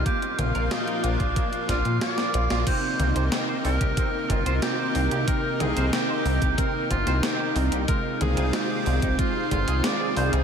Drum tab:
CC |----------------|x---------------|----------------|----------------|
HH |xxxxxxxxxxxxxxxx|x-xxx-oxx-xxx-ox|x-xxx-oxx-xxx-ox|x-xxx-oxx-xxx-ox|
SD |----o-----o-oo-o|----o-------o---|----o------oo---|----o-------o---|
T2 |--o-------------|--o-------------|--o-------------|--o-------------|
BD |o------oo-o-----|o------oo-o-----|o------oo-o-----|o------oo-o-----|